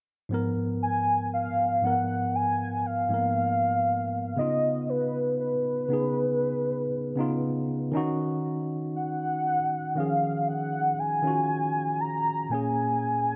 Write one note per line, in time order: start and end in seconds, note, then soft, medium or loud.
0.29 1.45 G#2 medium
0.29 1.46 F3 medium
0.29 1.47 B3 medium
0.34 1.47 A#4 medium
0.82 1.29 G#5 loud
1.34 1.86 F5 loud
1.82 2.78 G#2 medium
1.82 2.79 F3 medium
1.82 2.80 B3 medium
1.82 2.37 F#5 loud
1.87 2.81 A#4 medium
2.35 2.88 G#5 loud
2.86 4.38 F5 loud
3.09 4.05 G#2 medium
3.09 4.06 F3 medium
3.09 3.18 A#3 medium
3.14 4.08 A#4 medium
3.19 4.10 B3 medium
4.36 5.52 C#3 medium
4.36 5.53 B3 medium
4.36 5.53 D#4 medium
4.36 4.91 D#5 medium
4.41 5.54 F4 medium
4.89 5.40 B4 medium
5.40 7.90 B4 medium
5.88 6.85 C#3 medium
5.88 6.86 B3 medium
5.88 6.87 D#4 medium
5.93 6.88 G#4 medium
7.15 7.93 C#3 medium
7.15 7.94 B3 medium
7.15 7.94 D#4 medium
7.20 7.95 F4 medium
7.92 9.55 D#3 medium
7.92 9.56 C#4 medium
7.92 9.57 D#4 medium
7.97 9.58 F#4 loud
8.96 9.99 F#5 medium
9.95 10.92 D#3 medium
9.95 10.94 F3 medium
9.95 10.93 C#4 medium
9.95 10.49 F5 medium
10.00 10.94 G#4 medium
10.48 11.01 F#5 medium
10.99 12.02 G#5 loud
11.22 12.19 D#3 medium
11.22 12.20 C#4 medium
11.22 12.21 F4 medium
11.27 12.21 F#4 medium
12.01 12.51 A#5 loud
12.50 13.36 A#2 medium
12.50 13.36 A#3 medium
12.50 13.36 C#4 medium
12.50 13.36 G#5 loud
12.54 13.36 G#4 medium